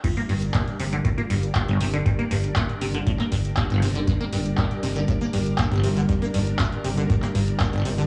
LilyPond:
<<
  \new Staff \with { instrumentName = "String machine" } { \time 4/4 \key g \minor \tempo 4 = 119 <g d' bes' d''>1~ | <g d' bes' d''>1~ | <g d' bes' d''>1~ | <g d' bes' d''>1 | }
  \new Staff \with { instrumentName = "FM electric piano" } { \time 4/4 \key g \minor f'8 r4. r16 f'8. r4 | r1 | r1 | r1 | }
  \new Staff \with { instrumentName = "Acid bass" } { \clef bass \time 4/4 \key g \minor g,16 bes16 g,16 r16 bes,16 r16 c16 d16 a,16 bes16 g,16 r16 bes,16 g,,16 c16 d16 | g,16 bes16 g,16 r16 bes,16 r16 c16 d16 a,16 bes16 g,16 r16 bes,16 g,,16 c16 d16 | g,16 bes16 g,16 r16 bes,16 r16 c16 d16 a,16 bes16 g,16 r16 bes,16 g,,16 c16 d16 | g,16 bes16 g,16 r16 bes,16 r16 c16 d16 a,16 bes16 g,16 r16 bes,16 g,,16 c16 d16 | }
  \new Staff \with { instrumentName = "Analog synth bass" } { \clef bass \time 4/4 \key g \minor r8 g,,8 r8 g,,8 r8 g,,8 r16 g,,16 g,,8 | r8 g,,8 r8 g,,8 r8 g,,8 r16 g,,16 g,,8 | r8 g,,8 r8 g,,8 r8 g,,8 r16 g,,16 g,,8 | r8 g,,8 r8 g,,8 r8 g,,8 r16 g,,16 g,,8 | }
  \new DrumStaff \with { instrumentName = "Drums" } \drummode { \time 4/4 <cymc hh bd>16 hh16 hho16 hh16 <hc hh bd>16 hh16 hho16 hh16 <hh bd>16 hh16 hho16 hh16 <hc hh bd>16 hh16 hho16 hh16 | <hh bd>16 hh16 hho16 hh16 <hc hh bd>16 hh16 hho16 hh16 <hh bd>16 <hc hh>16 <hho bd>16 hh16 <hc hh bd>16 hh16 hho16 hh16 | <hh bd>16 hh16 hho16 hh16 <hc hh bd>16 hh16 hho16 hh16 <hh bd>16 hh16 hho16 hh16 <hc hh bd>16 hh16 hho16 hh16 | <hh bd>16 hh16 hho16 hh16 <hc hh bd>16 hh16 hho16 hh16 <hh bd>16 <hc hh>16 <hho bd>16 hh16 <hc hh bd>16 hh16 hho16 hh16 | }
>>